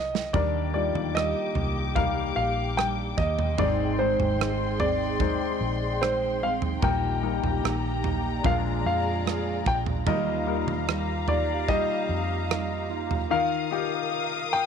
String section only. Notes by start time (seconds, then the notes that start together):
0.33 G4 G5 D6
3.59 G#4 C6
6.83 G4 A#5
8.45 G#4 D5
10.07 G4 F5 A#5
13.32 A#4 F5 D#6